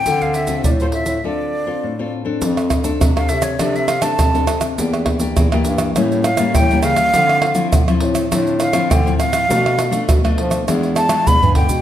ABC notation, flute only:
X:1
M:4/4
L:1/16
Q:1/4=102
K:Dm
V:1 name="Flute"
g f e2 d c e2 d6 z2 | [K:F] z4 z f e _d =d e f a4 z | z8 z2 f2 g2 f2- | f4 z6 f2 g2 f2- |
f4 z6 a2 =b2 g2 |]